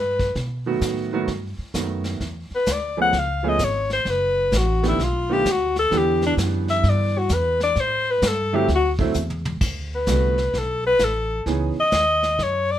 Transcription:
0.00 0.34 G2 medium
0.00 0.38 B4 medium
0.19 kick medium
0.19 snare soft
0.35 0.81 B2 medium
0.35 brush sweep soft
0.35 kick soft
0.35 snare soft
0.66 1.10 D#3 medium
0.66 1.10 F#3 medium
0.66 1.10 A3 medium
0.66 1.10 B3 medium
0.66 1.10 F#4 medium
0.81 1.27 A2 medium
0.81 kick soft
0.81 snare medium
0.81 hi-hat pedal medium
1.13 1.27 D#3 medium
1.13 1.27 F#3 medium
1.13 1.27 A3 medium
1.13 1.28 B3 medium
1.13 1.28 F#4 medium
1.28 1.57 G2 medium
1.28 brush sweep soft
1.28 kick soft
1.28 snare soft
1.58 muted upright bass stroke soft
1.74 2.20 F#2 medium
1.74 2.21 D#3 medium
1.74 2.21 F#3 medium
1.74 2.21 A3 soft
1.74 2.21 B3 medium
1.74 2.22 F#4 medium
1.74 kick soft
1.74 snare medium
1.74 hi-hat pedal medium
2.04 snare soft
2.20 2.49 E2 medium
2.20 brush sweep soft
2.20 kick soft
2.20 snare soft
2.51 muted upright bass stroke soft
2.55 2.74 B4 medium
2.66 3.12 D2 medium
2.66 kick soft
2.66 snare medium
2.66 hi-hat pedal medium
2.72 3.00 D5 medium
2.97 3.12 F3 medium
2.97 3.12 A3 medium
2.97 3.12 B3 medium
2.97 3.12 C#4 medium
2.97 3.12 G#4 medium
3.02 3.20 F#5 loud
3.13 3.58 C#2 medium
3.13 brush sweep soft
3.13 kick soft
3.13 snare soft
3.19 3.51 F5 loud
3.43 3.58 F3 medium
3.43 3.58 A3 medium
3.43 3.58 B3 medium
3.43 3.59 C#4 medium
3.43 3.59 G#4 medium
3.49 3.66 D#5 loud
3.59 4.05 G#1 medium
3.59 kick soft
3.59 snare medium
3.59 hi-hat pedal medium
3.65 3.93 C#5 medium
3.90 4.11 C5 loud
3.90 snare soft
4.05 4.51 F#1 medium
4.05 brush sweep soft
4.05 kick soft
4.05 snare soft
4.10 4.59 B4 medium
4.52 4.97 A1 medium
4.52 kick soft
4.52 snare medium
4.52 hi-hat pedal medium
4.57 4.85 F#4 medium
4.83 4.97 D#3 medium
4.83 4.97 A3 medium
4.83 4.98 B3 medium
4.83 4.98 D4 medium
4.83 4.98 G4 medium
4.83 snare soft
4.89 5.05 E4 medium
4.99 5.44 B1 medium
4.99 brush sweep medium
4.99 kick soft
4.99 snare soft
5.03 5.34 F4 medium
5.29 5.44 D#3 medium
5.29 5.44 A3 medium
5.29 5.44 B3 medium
5.29 5.44 D4 medium
5.29 5.44 F4 medium
5.29 5.53 G4 loud
5.45 5.90 D2 medium
5.45 kick soft
5.45 snare medium
5.45 hi-hat pedal medium
5.51 5.79 F#4 medium
5.76 5.99 A4 loud
5.76 snare soft
5.91 6.36 E2 medium
5.91 7.20 D3 medium
5.91 7.20 E3 medium
5.91 7.21 B3 medium
5.91 7.21 D4 medium
5.91 7.21 G4 medium
5.91 brush sweep soft
5.91 kick soft
5.91 snare soft
5.98 6.25 G4 medium
6.22 snare soft
6.26 6.34 D4 medium
6.37 6.82 F#2 medium
6.37 kick soft
6.37 snare medium
6.37 hi-hat pedal medium
6.68 6.91 E5 loud
6.68 snare soft
6.83 7.28 G2 medium
6.83 brush sweep medium
6.83 kick soft
6.83 snare soft
6.89 7.20 D5 loud
7.18 7.36 F#4 medium
7.29 7.75 E2 medium
7.29 kick soft
7.29 snare medium
7.29 hi-hat pedal medium
7.34 7.62 B4 medium
7.60 7.82 D5 loud
7.60 snare soft
7.76 8.21 A2 medium
7.76 brush sweep soft
7.76 kick soft
7.76 snare soft
7.80 8.12 C5 loud
8.11 8.29 B4 medium
8.22 8.67 G2 loud
8.22 kick soft
8.22 snare medium
8.22 hi-hat pedal medium
8.28 8.57 A4 medium
8.53 8.67 D3 medium
8.53 8.67 F#3 medium
8.53 8.67 A3 medium
8.53 8.67 C4 medium
8.53 8.68 E4 medium
8.53 8.70 G4 medium
8.68 9.13 D2 medium
8.68 brush sweep medium
8.68 kick soft
8.68 snare soft
8.75 8.91 F#4 medium
8.99 9.13 D3 medium
8.99 9.14 F#3 medium
8.99 9.14 A3 medium
8.99 9.14 C4 medium
8.99 9.14 E4 medium
8.99 kick medium
9.14 9.60 E2 loud
9.14 hi-hat pedal medium
9.14 mid tom soft
9.30 mid tom medium
9.45 mid tom medium
9.61 10.06 D2 medium
9.61 brush sweep soft
9.61 kick medium
9.61 snare soft
9.61 crash medium
9.95 10.60 B4 medium
10.06 10.52 C2 medium
10.06 10.35 D3 medium
10.06 10.35 G3 medium
10.06 10.35 A3 medium
10.06 10.35 B3 medium
10.06 10.35 F#4 medium
10.06 kick soft
10.06 snare medium
10.06 hi-hat pedal medium
10.38 snare soft
10.54 10.99 B1 medium
10.54 brush sweep soft
10.54 kick soft
10.54 snare soft
10.58 10.86 A4 medium
10.87 11.06 B4 loud
10.99 11.44 A1 medium
10.99 kick soft
10.99 snare medium
10.99 hi-hat pedal medium
11.04 11.48 A4 medium
11.46 11.74 C#2 medium
11.46 11.74 E3 medium
11.46 11.74 B3 medium
11.46 11.74 C#4 medium
11.46 11.74 D#4 medium
11.46 11.74 G#4 medium
11.46 brush sweep soft
11.46 kick soft
11.46 snare soft
11.80 12.45 D#5 loud
11.92 12.37 D#2 medium
11.92 kick soft
11.92 snare medium
11.92 hi-hat pedal medium
12.23 snare soft
12.38 12.79 F#2 medium
12.38 brush sweep soft
12.38 kick soft
12.38 snare soft
12.43 12.73 C#5 medium
12.71 12.79 D5 loud

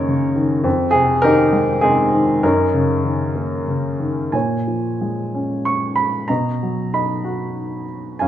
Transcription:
0.00 0.62 F#2 medium
0.00 0.08 C#3 soft
0.00 0.34 D#3 medium
0.00 0.63 A#3 soft
0.00 0.33 C#4 medium
0.00 0.33 D#4 medium
0.00 0.68 A#4 medium
0.00 0.68 C#5 medium
0.08 0.64 C#3 soft
0.36 0.64 D#3 medium
0.64 2.39 F2 medium
0.91 1.23 G#4 medium
0.95 1.82 C3 medium
1.22 2.12 D#3 medium
1.22 1.82 D#4 medium
1.22 2.10 G4 medium
1.22 1.78 A#4 loud
1.53 2.41 G#3 medium
1.81 2.42 C3 soft
1.81 2.40 C4 medium
1.81 2.40 D#4 medium
1.81 2.45 G#4 medium
2.14 2.43 D#3 medium
2.43 4.29 F#2 medium
2.43 3.64 C#4 medium
2.43 3.64 D#4 medium
2.43 3.63 A#4 medium
2.74 3.66 C#3 soft
3.04 3.98 D#3 soft
3.35 4.30 A#3 soft
3.68 4.32 C#3 soft
4.00 4.33 D#3 soft
4.32 6.25 A#2 soft
4.32 5.63 C#5 soft
4.32 5.69 G#5 medium
4.68 5.94 F3 soft
5.01 6.26 G#3 soft
5.35 6.27 C#4 soft
5.65 5.98 C#6 medium
5.96 6.29 B5 medium
6.28 8.17 B2 soft
6.28 6.93 D#5 soft
6.28 6.88 A#5 medium
6.63 7.86 F#3 soft
6.93 8.17 D#4 soft
6.93 7.85 D#5 soft
6.93 7.85 B5 medium
7.24 8.18 F#4 soft
8.19 8.28 F#2 medium
8.19 8.28 F5 soft
8.19 8.28 G#5 medium

